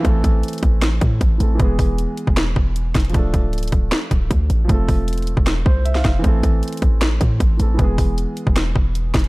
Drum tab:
HH |x---x---xxxxx---x---x---x---x---|x---o---x---x---x-------x---xxxx|x---x---xxxxx---x---x---x---x---|x---o---xxxxx---x-------x---x---|
SD |----------------o---------------|----------------o-----------o---|----------------o---------------|----------------o---------o-o---|
BD |o---o-------o-------o---o-------|o---o---------o-----o-------o---|o---o-------o-------o---o-------|o---o---------o-----o-------o---|

HH |x---x---xxxxx---x---x---x---x---|x---o---x---x---x-------x---xxx-|
SD |----------------o---------------|----------------o-----------o---|
BD |o---o-------o-------o---o-------|o---o---------o-----o-------o---|